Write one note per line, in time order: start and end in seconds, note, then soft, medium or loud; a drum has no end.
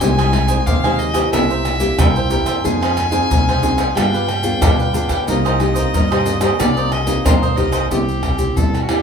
0.00 0.57 C2 loud
0.00 0.64 C3 medium
0.00 0.29 G#3 medium
0.00 0.29 D#4 medium
0.00 0.16 G4 medium
0.00 0.29 G4 medium
0.00 0.16 C5 medium
0.00 0.16 D#5 medium
0.00 0.68 G#5 loud
0.00 0.16 G#5 medium
0.00 pandeiro medium
0.00 maracas medium
0.00 surdo medium
0.17 0.31 C5 medium
0.17 0.31 D#5 medium
0.17 0.32 G#5 medium
0.17 pandeiro soft
0.17 tamborim medium
0.17 maracas soft
0.32 0.78 G#3 medium
0.32 0.78 D#4 medium
0.32 muted cavaquinho stroke soft
0.32 pandeiro medium
0.32 tamborim medium
0.32 surdo soft
0.47 0.65 C5 medium
0.47 0.65 D#5 medium
0.47 0.64 G#5 medium
0.47 pandeiro medium
0.47 maracas medium
0.47 surdo soft
0.66 1.23 D#2 medium
0.66 1.30 C3 medium
0.66 0.82 G4 medium
0.66 0.82 C5 medium
0.66 0.82 D#5 medium
0.66 1.00 F5 medium
0.66 0.83 G#5 medium
0.66 pandeiro medium
0.66 maracas medium
0.66 surdo medium
0.84 1.12 G#3 medium
0.84 1.12 D#4 medium
0.84 1.12 G4 medium
0.84 1.14 C5 medium
0.84 1.13 D#5 medium
0.84 1.12 G#5 medium
0.84 pandeiro soft
0.84 tamborim medium
0.84 maracas soft
0.99 1.32 D#5 loud
0.99 pandeiro medium
1.13 1.76 A#3 medium
1.13 1.76 E4 medium
1.13 1.76 G4 medium
1.13 1.31 C5 medium
1.13 1.30 D#5 medium
1.13 1.30 G#5 medium
1.13 pandeiro medium
1.13 tamborim medium
1.13 maracas medium
1.13 surdo soft
1.32 1.89 C2 medium
1.32 1.95 C3 medium
1.32 1.48 E4 soft
1.32 1.48 A#4 soft
1.32 1.48 C5 soft
1.32 2.00 E5 medium
1.32 1.48 E5 medium
1.32 pandeiro loud
1.32 tamborim medium
1.32 maracas medium
1.32 surdo medium
1.50 1.64 A#4 soft
1.50 1.64 C5 medium
1.50 1.64 E5 medium
1.50 pandeiro soft
1.50 maracas soft
1.64 muted cavaquinho stroke soft
1.64 pandeiro medium
1.64 tamborim medium
1.64 maracas medium
1.80 2.25 A#3 medium
1.80 2.25 E4 medium
1.80 2.26 G4 medium
1.80 pandeiro medium
1.80 maracas medium
1.80 surdo soft
1.98 2.40 C2 loud
1.98 2.61 G2 medium
1.98 2.14 E4 medium
1.98 2.14 A#4 medium
1.98 2.14 C5 medium
1.98 2.14 E5 medium
1.98 2.66 G5 medium
1.98 pandeiro medium
1.98 tamborim loud
1.98 maracas medium
1.98 surdo loud
2.16 2.29 A#4 soft
2.16 2.30 C5 medium
2.16 2.31 E5 medium
2.16 pandeiro soft
2.16 maracas soft
2.29 2.58 A#3 medium
2.29 2.46 E4 medium
2.29 2.58 E4 medium
2.29 2.59 G4 medium
2.29 2.46 A#4 soft
2.29 2.45 C5 medium
2.29 2.44 E5 medium
2.29 pandeiro medium
2.29 maracas medium
2.45 2.60 E2 loud
2.45 2.63 A#4 medium
2.45 2.62 C5 medium
2.45 2.62 E5 medium
2.45 pandeiro medium
2.45 tamborim medium
2.45 maracas medium
2.45 surdo soft
2.64 3.20 F2 loud
2.64 3.27 F3 medium
2.64 2.95 C4 medium
2.64 2.80 D#4 medium
2.64 2.95 D#4 medium
2.64 2.95 G#4 medium
2.64 2.80 G#4 soft
2.64 2.80 C5 medium
2.64 2.80 F5 medium
2.64 3.97 G#5 loud
2.64 pandeiro medium
2.64 maracas medium
2.64 surdo medium
2.81 2.95 G#4 medium
2.81 2.96 C5 medium
2.81 2.96 F5 medium
2.81 pandeiro soft
2.81 tamborim medium
2.81 maracas soft
2.96 muted cavaquinho stroke soft
2.96 pandeiro medium
2.96 tamborim medium
2.96 maracas medium
2.96 surdo soft
3.11 3.57 C4 medium
3.11 3.57 D#4 medium
3.11 3.57 G#4 medium
3.11 3.28 G#4 medium
3.11 3.28 C5 medium
3.11 3.28 F5 medium
3.11 pandeiro medium
3.11 maracas medium
3.11 surdo soft
3.30 3.86 C2 loud
3.30 3.93 C3 medium
3.30 3.45 D#4 medium
3.30 3.46 G#4 soft
3.30 3.46 C5 medium
3.30 3.46 F5 medium
3.30 pandeiro medium
3.30 maracas medium
3.30 surdo medium
3.48 3.78 G#4 medium
3.48 3.77 C5 medium
3.48 3.76 F5 medium
3.48 pandeiro soft
3.48 tamborim medium
3.48 maracas soft
3.62 3.82 C4 medium
3.62 3.82 D#4 medium
3.62 3.82 G#4 medium
3.62 pandeiro medium
3.62 maracas medium
3.77 3.94 G#4 medium
3.77 3.94 C5 medium
3.77 3.94 F5 medium
3.77 pandeiro medium
3.77 tamborim medium
3.77 maracas medium
3.77 surdo soft
3.95 4.52 G2 medium
3.95 4.58 G3 medium
3.95 4.27 B3 medium
3.95 4.11 D4 soft
3.95 4.27 F4 medium
3.95 4.12 G4 soft
3.95 4.27 G#4 medium
3.95 4.12 B4 soft
3.95 4.12 F5 medium
3.95 5.27 G5 medium
3.95 pandeiro medium
3.95 tamborim loud
3.95 maracas medium
3.95 surdo medium
4.13 4.27 G4 medium
4.13 4.27 B4 medium
4.13 4.27 F5 medium
4.13 pandeiro soft
4.13 maracas soft
4.28 muted cavaquinho stroke soft
4.28 pandeiro medium
4.28 tamborim medium
4.43 4.88 B3 medium
4.43 4.89 F4 medium
4.43 4.89 G#4 medium
4.43 pandeiro medium
4.43 maracas medium
4.43 surdo soft
4.61 5.04 G2 medium
4.61 5.25 D3 medium
4.61 4.77 D4 medium
4.61 4.77 G4 medium
4.61 4.77 B4 medium
4.61 4.78 F5 medium
4.61 pandeiro loud
4.61 tamborim medium
4.61 maracas medium
4.61 surdo loud
4.79 4.92 G4 medium
4.79 4.93 B4 medium
4.79 4.93 F5 medium
4.79 pandeiro soft
4.79 maracas soft
4.93 5.14 B3 medium
4.93 5.09 D4 medium
4.93 5.14 F4 medium
4.93 5.09 G4 medium
4.93 5.14 G#4 medium
4.93 5.08 B4 medium
4.93 5.07 F5 medium
4.93 pandeiro medium
4.93 maracas medium
5.08 5.24 D2 loud
5.08 5.26 G4 medium
5.08 5.26 B4 medium
5.08 5.25 F5 medium
5.08 pandeiro medium
5.08 tamborim medium
5.08 maracas medium
5.08 surdo soft
5.27 5.83 C2 loud
5.27 5.91 C3 medium
5.27 5.56 A#3 medium
5.27 5.43 D#4 medium
5.27 5.56 D#4 medium
5.27 5.56 G4 medium
5.27 5.43 A#4 medium
5.27 5.43 C5 medium
5.27 6.61 D#5 medium
5.27 5.44 D#5 medium
5.27 pandeiro medium
5.27 maracas medium
5.27 surdo medium
5.45 5.59 A#4 medium
5.45 5.59 C5 medium
5.45 5.59 D#5 medium
5.45 pandeiro soft
5.45 tamborim medium
5.45 maracas soft
5.59 5.91 A#3 medium
5.59 5.91 D#4 medium
5.59 5.92 G4 medium
5.59 muted cavaquinho stroke soft
5.59 pandeiro medium
5.59 tamborim medium
5.74 5.92 A#4 medium
5.74 5.91 C5 medium
5.74 5.91 D#5 medium
5.74 pandeiro medium
5.74 maracas medium
5.74 surdo soft
5.93 6.49 G2 loud
5.93 6.56 G2 medium
5.93 6.09 D#4 medium
5.93 6.09 A#4 medium
5.93 6.09 C5 medium
5.93 6.09 D#5 medium
5.93 pandeiro medium
5.93 maracas medium
5.93 surdo medium
6.10 6.38 A#3 medium
6.10 6.38 D#4 medium
6.10 6.38 G4 medium
6.10 6.41 A#4 medium
6.10 6.40 C5 medium
6.10 6.40 D#5 medium
6.10 pandeiro soft
6.10 tamborim medium
6.10 maracas soft
6.26 pandeiro medium
6.26 maracas medium
6.40 6.53 A#3 medium
6.40 6.53 D#4 medium
6.40 6.53 G4 medium
6.40 6.58 A#4 medium
6.40 6.57 C5 medium
6.40 6.57 D#5 medium
6.40 pandeiro medium
6.40 tamborim medium
6.40 maracas medium
6.40 surdo soft
6.59 7.15 C2 medium
6.59 7.22 C3 medium
6.59 6.90 A#3 medium
6.59 6.74 D#4 soft
6.59 6.90 D#4 medium
6.59 6.91 G4 medium
6.59 6.75 A#4 soft
6.59 6.75 C5 medium
6.59 6.93 D5 medium
6.59 6.75 D#5 medium
6.59 pandeiro medium
6.59 tamborim loud
6.59 maracas medium
6.59 surdo medium
6.77 6.90 A#4 medium
6.77 6.91 C5 medium
6.77 6.91 D#5 medium
6.77 pandeiro soft
6.77 maracas soft
6.91 7.27 D#5 medium
6.91 muted cavaquinho stroke soft
6.91 pandeiro medium
6.91 tamborim medium
7.06 7.51 A#3 medium
7.06 7.52 D#4 medium
7.06 7.52 G4 medium
7.06 pandeiro medium
7.06 maracas medium
7.06 surdo soft
7.25 7.55 D2 medium
7.25 7.87 G2 medium
7.25 7.40 D#4 medium
7.25 7.40 A#4 medium
7.25 7.58 C5 medium
7.25 7.41 C5 medium
7.25 7.41 D#5 medium
7.25 pandeiro loud
7.25 tamborim medium
7.25 maracas medium
7.25 surdo loud
7.42 7.56 A#4 medium
7.42 7.56 C5 medium
7.42 7.57 D#5 medium
7.42 pandeiro soft
7.42 maracas soft
7.56 7.87 C2 medium
7.56 7.85 A#3 medium
7.56 7.72 D#4 medium
7.56 7.85 D#4 medium
7.56 7.86 G4 medium
7.56 7.72 A#4 medium
7.56 7.71 C5 medium
7.56 7.90 D#5 medium
7.56 7.70 D#5 medium
7.56 pandeiro medium
7.72 7.89 A#4 medium
7.72 7.88 C5 medium
7.72 7.88 D#5 medium
7.72 pandeiro medium
7.72 tamborim medium
7.72 maracas medium
7.72 surdo soft
7.90 8.47 C2 loud
7.90 8.53 C3 medium
7.90 8.22 C4 medium
7.90 8.22 E4 medium
7.90 8.58 G4 medium
7.90 8.22 G4 medium
7.90 pandeiro medium
7.90 maracas medium
7.90 surdo medium
8.09 pandeiro soft
8.09 maracas soft
8.23 pandeiro medium
8.23 tamborim medium
8.23 surdo medium
8.38 8.83 C4 medium
8.38 8.83 E4 medium
8.38 8.83 G4 medium
8.38 pandeiro medium
8.38 maracas medium
8.56 8.84 E2 loud
8.56 9.02 G2 medium
8.56 8.82 A4 medium
8.56 pandeiro medium
8.56 maracas medium
8.56 surdo medium
8.74 pandeiro soft
8.74 tamborim medium
8.74 maracas soft
8.82 8.90 F#4 medium
8.88 9.02 C4 medium
8.88 9.02 E4 medium
8.88 9.02 G4 medium
8.88 pandeiro medium
8.88 tamborim loud